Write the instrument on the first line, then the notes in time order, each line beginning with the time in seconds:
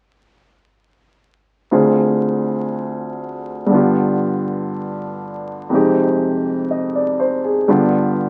upright piano
1.71 D2 D3 C4 F4 G#4
3.67 G2 D3
3.72 B3 F4
3.78 G4
5.70 F2 C3 G#3 D#4
5.75 G4
6.71 D#5
6.95 D5
7.20 C5
7.44 G#4
7.68 G2 D3 B3 F4 G4